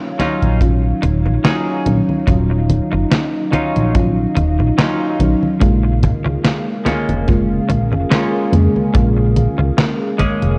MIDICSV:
0, 0, Header, 1, 7, 480
1, 0, Start_track
1, 0, Key_signature, -6, "minor"
1, 0, Tempo, 833333
1, 1312, Time_signature, 4, 2, 24, 8
1, 6096, End_track
2, 0, Start_track
2, 0, Title_t, "Ambient pad"
2, 0, Program_c, 0, 92
2, 0, Note_on_c, 0, 54, 78
2, 0, Note_on_c, 0, 63, 89
2, 0, Note_on_c, 0, 73, 81
2, 0, Note_on_c, 0, 77, 99
2, 1291, Note_off_c, 0, 73, 0
2, 1312, Note_on_c, 0, 75, 81
2, 3208, Note_off_c, 0, 54, 0
2, 3208, Note_off_c, 0, 63, 0
2, 3213, Note_off_c, 0, 75, 0
2, 3230, Note_on_c, 0, 61, 93
2, 3230, Note_on_c, 0, 68, 80
2, 3231, Note_on_c, 0, 70, 81
2, 6096, Note_off_c, 0, 61, 0
2, 6096, Note_off_c, 0, 68, 0
2, 6096, Note_off_c, 0, 70, 0
2, 6096, Note_off_c, 0, 77, 0
2, 6096, End_track
3, 0, Start_track
3, 0, Title_t, "Clean electric guitar"
3, 0, Program_c, 1, 27
3, 109, Note_on_c, 1, 54, 86
3, 113, Note_on_c, 1, 63, 85
3, 114, Note_on_c, 1, 61, 73
3, 119, Note_on_c, 1, 65, 91
3, 351, Note_off_c, 1, 54, 0
3, 351, Note_off_c, 1, 61, 0
3, 353, Note_off_c, 1, 63, 0
3, 354, Note_off_c, 1, 65, 0
3, 830, Note_on_c, 1, 54, 96
3, 835, Note_on_c, 1, 61, 66
3, 835, Note_on_c, 1, 63, 82
3, 838, Note_on_c, 1, 68, 101
3, 1071, Note_off_c, 1, 54, 0
3, 1072, Note_off_c, 1, 61, 0
3, 1073, Note_off_c, 1, 63, 0
3, 1075, Note_off_c, 1, 68, 0
3, 2028, Note_on_c, 1, 54, 83
3, 2032, Note_on_c, 1, 61, 66
3, 2032, Note_on_c, 1, 63, 86
3, 2036, Note_on_c, 1, 65, 81
3, 2270, Note_off_c, 1, 54, 0
3, 2271, Note_off_c, 1, 61, 0
3, 2272, Note_off_c, 1, 63, 0
3, 2273, Note_off_c, 1, 65, 0
3, 2751, Note_on_c, 1, 54, 92
3, 2753, Note_on_c, 1, 61, 87
3, 2757, Note_on_c, 1, 63, 74
3, 2757, Note_on_c, 1, 65, 103
3, 2991, Note_off_c, 1, 54, 0
3, 2992, Note_off_c, 1, 61, 0
3, 2993, Note_off_c, 1, 63, 0
3, 2994, Note_off_c, 1, 65, 0
3, 3946, Note_on_c, 1, 56, 90
3, 3949, Note_on_c, 1, 58, 75
3, 3951, Note_on_c, 1, 61, 91
3, 3954, Note_on_c, 1, 65, 87
3, 4189, Note_off_c, 1, 56, 0
3, 4189, Note_off_c, 1, 58, 0
3, 4191, Note_off_c, 1, 61, 0
3, 4192, Note_off_c, 1, 65, 0
3, 4667, Note_on_c, 1, 56, 88
3, 4671, Note_on_c, 1, 61, 88
3, 4672, Note_on_c, 1, 58, 79
3, 4675, Note_on_c, 1, 65, 101
3, 4910, Note_off_c, 1, 56, 0
3, 4911, Note_off_c, 1, 58, 0
3, 4912, Note_off_c, 1, 61, 0
3, 4912, Note_off_c, 1, 65, 0
3, 5865, Note_on_c, 1, 56, 101
3, 5870, Note_on_c, 1, 58, 75
3, 5870, Note_on_c, 1, 61, 83
3, 5872, Note_on_c, 1, 68, 102
3, 6096, Note_off_c, 1, 56, 0
3, 6096, Note_off_c, 1, 58, 0
3, 6096, Note_off_c, 1, 61, 0
3, 6096, Note_off_c, 1, 68, 0
3, 6096, End_track
4, 0, Start_track
4, 0, Title_t, "FM electric piano"
4, 0, Program_c, 2, 5
4, 0, Control_c, 2, 64, 127
4, 0, Note_on_c, 2, 51, 89
4, 0, Note_on_c, 2, 54, 79
4, 0, Note_on_c, 2, 61, 78
4, 0, Note_on_c, 2, 65, 100
4, 321, Note_off_c, 2, 51, 0
4, 324, Note_off_c, 2, 54, 0
4, 327, Note_off_c, 2, 61, 0
4, 329, Note_off_c, 2, 65, 0
4, 347, Note_on_c, 2, 51, 87
4, 351, Note_on_c, 2, 54, 78
4, 353, Note_on_c, 2, 61, 80
4, 356, Note_on_c, 2, 65, 96
4, 480, Note_off_c, 2, 51, 0
4, 482, Note_off_c, 2, 54, 0
4, 483, Note_off_c, 2, 61, 0
4, 484, Note_off_c, 2, 65, 0
4, 1070, Note_on_c, 2, 51, 95
4, 1073, Note_on_c, 2, 54, 87
4, 1075, Note_on_c, 2, 61, 87
4, 1284, Note_off_c, 2, 51, 0
4, 1286, Note_off_c, 2, 54, 0
4, 1287, Note_off_c, 2, 61, 0
4, 1308, Note_on_c, 2, 51, 85
4, 1313, Note_on_c, 2, 54, 80
4, 1318, Note_on_c, 2, 61, 77
4, 1325, Note_on_c, 2, 65, 94
4, 2244, Note_off_c, 2, 51, 0
4, 2246, Note_off_c, 2, 54, 0
4, 2249, Note_off_c, 2, 61, 0
4, 2252, Note_off_c, 2, 65, 0
4, 2270, Note_on_c, 2, 51, 85
4, 2273, Note_on_c, 2, 54, 82
4, 2276, Note_on_c, 2, 61, 83
4, 2279, Note_on_c, 2, 65, 96
4, 2401, Note_off_c, 2, 51, 0
4, 2403, Note_off_c, 2, 54, 0
4, 2404, Note_off_c, 2, 61, 0
4, 2406, Note_off_c, 2, 65, 0
4, 2988, Note_on_c, 2, 51, 98
4, 2990, Note_on_c, 2, 54, 86
4, 2994, Note_on_c, 2, 61, 83
4, 3204, Note_off_c, 2, 51, 0
4, 3205, Note_off_c, 2, 54, 0
4, 3207, Note_off_c, 2, 61, 0
4, 3224, Note_on_c, 2, 49, 90
4, 3230, Note_on_c, 2, 56, 81
4, 3235, Note_on_c, 2, 58, 80
4, 3238, Control_c, 2, 64, 0
4, 3242, Note_on_c, 2, 65, 98
4, 3353, Control_c, 2, 64, 127
4, 4161, Note_off_c, 2, 49, 0
4, 4165, Note_off_c, 2, 56, 0
4, 4167, Note_off_c, 2, 58, 0
4, 4171, Note_off_c, 2, 65, 0
4, 4189, Note_on_c, 2, 49, 85
4, 4191, Note_on_c, 2, 56, 83
4, 4195, Note_on_c, 2, 58, 78
4, 4197, Note_on_c, 2, 65, 103
4, 4321, Note_off_c, 2, 49, 0
4, 4322, Note_off_c, 2, 56, 0
4, 4324, Note_off_c, 2, 58, 0
4, 4324, Note_off_c, 2, 65, 0
4, 4907, Note_on_c, 2, 49, 94
4, 4910, Note_on_c, 2, 56, 89
4, 4913, Note_on_c, 2, 58, 86
4, 4915, Note_on_c, 2, 68, 103
4, 5123, Note_off_c, 2, 49, 0
4, 5124, Note_off_c, 2, 56, 0
4, 5126, Note_off_c, 2, 58, 0
4, 5127, Note_off_c, 2, 68, 0
4, 5144, Note_on_c, 2, 49, 85
4, 5149, Note_on_c, 2, 56, 80
4, 5156, Note_on_c, 2, 58, 82
4, 5162, Note_on_c, 2, 65, 94
4, 6082, Note_off_c, 2, 49, 0
4, 6084, Note_off_c, 2, 56, 0
4, 6087, Note_off_c, 2, 58, 0
4, 6090, Note_off_c, 2, 65, 0
4, 6096, End_track
5, 0, Start_track
5, 0, Title_t, "Analog synth bass"
5, 0, Program_c, 3, 38
5, 243, Note_on_c, 3, 34, 91
5, 536, Note_off_c, 3, 34, 0
5, 593, Note_on_c, 3, 27, 103
5, 724, Note_on_c, 3, 34, 92
5, 733, Note_off_c, 3, 27, 0
5, 798, Note_off_c, 3, 34, 0
5, 1075, Note_on_c, 3, 34, 104
5, 1163, Note_off_c, 3, 34, 0
5, 1312, Note_on_c, 3, 27, 103
5, 1616, Note_off_c, 3, 27, 0
5, 1686, Note_on_c, 3, 30, 87
5, 1759, Note_off_c, 3, 30, 0
5, 2165, Note_on_c, 3, 34, 92
5, 2457, Note_off_c, 3, 34, 0
5, 2513, Note_on_c, 3, 27, 103
5, 2643, Note_on_c, 3, 34, 94
5, 2652, Note_off_c, 3, 27, 0
5, 2717, Note_off_c, 3, 34, 0
5, 2992, Note_on_c, 3, 34, 102
5, 3081, Note_off_c, 3, 34, 0
5, 3235, Note_on_c, 3, 34, 102
5, 3537, Note_off_c, 3, 34, 0
5, 3601, Note_on_c, 3, 37, 89
5, 3676, Note_off_c, 3, 37, 0
5, 4083, Note_on_c, 3, 29, 88
5, 4376, Note_off_c, 3, 29, 0
5, 4432, Note_on_c, 3, 34, 97
5, 4563, Note_on_c, 3, 29, 88
5, 4571, Note_off_c, 3, 34, 0
5, 4637, Note_off_c, 3, 29, 0
5, 4909, Note_on_c, 3, 41, 97
5, 5000, Note_off_c, 3, 41, 0
5, 5154, Note_on_c, 3, 34, 101
5, 5457, Note_off_c, 3, 34, 0
5, 5523, Note_on_c, 3, 37, 85
5, 5597, Note_off_c, 3, 37, 0
5, 6004, Note_on_c, 3, 29, 94
5, 6096, Note_off_c, 3, 29, 0
5, 6096, End_track
6, 0, Start_track
6, 0, Title_t, "Muted clean electric guitar strokes"
6, 588, Note_on_c, 9, 29, 116
6, 646, Note_off_c, 9, 29, 0
6, 724, Note_on_c, 9, 29, 35
6, 781, Note_off_c, 9, 29, 0
6, 1308, Note_on_c, 9, 29, 114
6, 1366, Note_off_c, 9, 29, 0
6, 1441, Note_on_c, 9, 29, 32
6, 1499, Note_off_c, 9, 29, 0
6, 1680, Note_on_c, 9, 29, 90
6, 1738, Note_off_c, 9, 29, 0
6, 1789, Note_on_c, 9, 29, 33
6, 1846, Note_off_c, 9, 29, 0
6, 2506, Note_on_c, 9, 29, 122
6, 2564, Note_off_c, 9, 29, 0
6, 2641, Note_on_c, 9, 29, 34
6, 2699, Note_off_c, 9, 29, 0
6, 3228, Note_on_c, 9, 29, 117
6, 3286, Note_off_c, 9, 29, 0
6, 3361, Note_on_c, 9, 29, 32
6, 3418, Note_off_c, 9, 29, 0
6, 3597, Note_on_c, 9, 29, 90
6, 3655, Note_off_c, 9, 29, 0
6, 3708, Note_on_c, 9, 29, 35
6, 3766, Note_off_c, 9, 29, 0
6, 4427, Note_on_c, 9, 29, 116
6, 4485, Note_off_c, 9, 29, 0
6, 4560, Note_on_c, 9, 29, 33
6, 4617, Note_off_c, 9, 29, 0
6, 5147, Note_on_c, 9, 29, 114
6, 5204, Note_off_c, 9, 29, 0
6, 5279, Note_on_c, 9, 29, 33
6, 5337, Note_off_c, 9, 29, 0
6, 5518, Note_on_c, 9, 29, 89
6, 5576, Note_off_c, 9, 29, 0
6, 5628, Note_on_c, 9, 29, 33
6, 5685, Note_off_c, 9, 29, 0
6, 6096, End_track
7, 0, Start_track
7, 0, Title_t, "Drums"
7, 113, Note_on_c, 9, 38, 61
7, 113, Note_on_c, 9, 42, 62
7, 113, Note_on_c, 9, 63, 64
7, 170, Note_off_c, 9, 38, 0
7, 170, Note_off_c, 9, 42, 0
7, 170, Note_off_c, 9, 63, 0
7, 244, Note_on_c, 9, 42, 36
7, 244, Note_on_c, 9, 63, 35
7, 302, Note_off_c, 9, 42, 0
7, 302, Note_off_c, 9, 63, 0
7, 351, Note_on_c, 9, 36, 115
7, 354, Note_on_c, 9, 42, 76
7, 354, Note_on_c, 9, 63, 27
7, 408, Note_off_c, 9, 36, 0
7, 411, Note_off_c, 9, 42, 0
7, 411, Note_off_c, 9, 63, 0
7, 594, Note_on_c, 9, 42, 62
7, 594, Note_on_c, 9, 63, 61
7, 651, Note_off_c, 9, 42, 0
7, 651, Note_off_c, 9, 63, 0
7, 724, Note_on_c, 9, 63, 38
7, 782, Note_off_c, 9, 63, 0
7, 833, Note_on_c, 9, 38, 116
7, 833, Note_on_c, 9, 42, 75
7, 833, Note_on_c, 9, 63, 27
7, 891, Note_off_c, 9, 38, 0
7, 891, Note_off_c, 9, 42, 0
7, 891, Note_off_c, 9, 63, 0
7, 1073, Note_on_c, 9, 42, 64
7, 1073, Note_on_c, 9, 63, 63
7, 1131, Note_off_c, 9, 42, 0
7, 1131, Note_off_c, 9, 63, 0
7, 1204, Note_on_c, 9, 63, 36
7, 1262, Note_off_c, 9, 63, 0
7, 1312, Note_on_c, 9, 36, 108
7, 1313, Note_on_c, 9, 42, 73
7, 1313, Note_on_c, 9, 63, 27
7, 1369, Note_off_c, 9, 36, 0
7, 1370, Note_off_c, 9, 42, 0
7, 1370, Note_off_c, 9, 63, 0
7, 1553, Note_on_c, 9, 42, 61
7, 1553, Note_on_c, 9, 63, 66
7, 1611, Note_off_c, 9, 42, 0
7, 1611, Note_off_c, 9, 63, 0
7, 1686, Note_on_c, 9, 63, 38
7, 1743, Note_off_c, 9, 63, 0
7, 1794, Note_on_c, 9, 38, 122
7, 1794, Note_on_c, 9, 42, 80
7, 1794, Note_on_c, 9, 63, 28
7, 1852, Note_off_c, 9, 38, 0
7, 1852, Note_off_c, 9, 42, 0
7, 1852, Note_off_c, 9, 63, 0
7, 2034, Note_on_c, 9, 42, 66
7, 2034, Note_on_c, 9, 63, 66
7, 2092, Note_off_c, 9, 42, 0
7, 2092, Note_off_c, 9, 63, 0
7, 2166, Note_on_c, 9, 42, 34
7, 2166, Note_on_c, 9, 63, 35
7, 2223, Note_off_c, 9, 42, 0
7, 2223, Note_off_c, 9, 63, 0
7, 2274, Note_on_c, 9, 42, 77
7, 2274, Note_on_c, 9, 63, 28
7, 2275, Note_on_c, 9, 36, 119
7, 2331, Note_off_c, 9, 42, 0
7, 2331, Note_off_c, 9, 63, 0
7, 2332, Note_off_c, 9, 36, 0
7, 2513, Note_on_c, 9, 42, 62
7, 2513, Note_on_c, 9, 63, 65
7, 2571, Note_off_c, 9, 42, 0
7, 2571, Note_off_c, 9, 63, 0
7, 2646, Note_on_c, 9, 63, 38
7, 2703, Note_off_c, 9, 63, 0
7, 2755, Note_on_c, 9, 38, 115
7, 2755, Note_on_c, 9, 42, 79
7, 2755, Note_on_c, 9, 63, 28
7, 2813, Note_off_c, 9, 38, 0
7, 2813, Note_off_c, 9, 42, 0
7, 2813, Note_off_c, 9, 63, 0
7, 2995, Note_on_c, 9, 42, 65
7, 2995, Note_on_c, 9, 63, 68
7, 3052, Note_off_c, 9, 42, 0
7, 3052, Note_off_c, 9, 63, 0
7, 3126, Note_on_c, 9, 63, 37
7, 3184, Note_off_c, 9, 63, 0
7, 3233, Note_on_c, 9, 42, 79
7, 3233, Note_on_c, 9, 63, 28
7, 3235, Note_on_c, 9, 36, 111
7, 3291, Note_off_c, 9, 42, 0
7, 3291, Note_off_c, 9, 63, 0
7, 3292, Note_off_c, 9, 36, 0
7, 3473, Note_on_c, 9, 42, 67
7, 3473, Note_on_c, 9, 63, 67
7, 3478, Note_on_c, 9, 36, 93
7, 3531, Note_off_c, 9, 42, 0
7, 3531, Note_off_c, 9, 63, 0
7, 3535, Note_off_c, 9, 36, 0
7, 3605, Note_on_c, 9, 63, 38
7, 3663, Note_off_c, 9, 63, 0
7, 3713, Note_on_c, 9, 38, 113
7, 3713, Note_on_c, 9, 42, 82
7, 3713, Note_on_c, 9, 63, 30
7, 3770, Note_off_c, 9, 38, 0
7, 3770, Note_off_c, 9, 42, 0
7, 3770, Note_off_c, 9, 63, 0
7, 3953, Note_on_c, 9, 38, 60
7, 3953, Note_on_c, 9, 42, 67
7, 3953, Note_on_c, 9, 63, 67
7, 4010, Note_off_c, 9, 38, 0
7, 4010, Note_off_c, 9, 42, 0
7, 4010, Note_off_c, 9, 63, 0
7, 4084, Note_on_c, 9, 42, 36
7, 4084, Note_on_c, 9, 63, 38
7, 4141, Note_off_c, 9, 42, 0
7, 4141, Note_off_c, 9, 63, 0
7, 4193, Note_on_c, 9, 42, 77
7, 4193, Note_on_c, 9, 63, 28
7, 4198, Note_on_c, 9, 36, 126
7, 4250, Note_off_c, 9, 42, 0
7, 4250, Note_off_c, 9, 63, 0
7, 4255, Note_off_c, 9, 36, 0
7, 4433, Note_on_c, 9, 42, 62
7, 4433, Note_on_c, 9, 63, 69
7, 4491, Note_off_c, 9, 42, 0
7, 4491, Note_off_c, 9, 63, 0
7, 4564, Note_on_c, 9, 63, 40
7, 4622, Note_off_c, 9, 63, 0
7, 4674, Note_on_c, 9, 38, 116
7, 4674, Note_on_c, 9, 42, 80
7, 4674, Note_on_c, 9, 63, 28
7, 4731, Note_off_c, 9, 38, 0
7, 4731, Note_off_c, 9, 42, 0
7, 4731, Note_off_c, 9, 63, 0
7, 4912, Note_on_c, 9, 42, 66
7, 4912, Note_on_c, 9, 63, 72
7, 4970, Note_off_c, 9, 42, 0
7, 4970, Note_off_c, 9, 63, 0
7, 5045, Note_on_c, 9, 63, 39
7, 5103, Note_off_c, 9, 63, 0
7, 5153, Note_on_c, 9, 42, 80
7, 5153, Note_on_c, 9, 63, 28
7, 5154, Note_on_c, 9, 36, 127
7, 5210, Note_off_c, 9, 42, 0
7, 5210, Note_off_c, 9, 63, 0
7, 5212, Note_off_c, 9, 36, 0
7, 5393, Note_on_c, 9, 42, 68
7, 5393, Note_on_c, 9, 63, 71
7, 5451, Note_off_c, 9, 42, 0
7, 5451, Note_off_c, 9, 63, 0
7, 5524, Note_on_c, 9, 63, 39
7, 5582, Note_off_c, 9, 63, 0
7, 5633, Note_on_c, 9, 38, 121
7, 5633, Note_on_c, 9, 42, 85
7, 5633, Note_on_c, 9, 63, 31
7, 5691, Note_off_c, 9, 38, 0
7, 5691, Note_off_c, 9, 42, 0
7, 5691, Note_off_c, 9, 63, 0
7, 5871, Note_on_c, 9, 42, 69
7, 5871, Note_on_c, 9, 63, 68
7, 5873, Note_on_c, 9, 36, 62
7, 5928, Note_off_c, 9, 42, 0
7, 5928, Note_off_c, 9, 63, 0
7, 5931, Note_off_c, 9, 36, 0
7, 6003, Note_on_c, 9, 42, 36
7, 6003, Note_on_c, 9, 63, 39
7, 6061, Note_off_c, 9, 42, 0
7, 6061, Note_off_c, 9, 63, 0
7, 6096, End_track
0, 0, End_of_file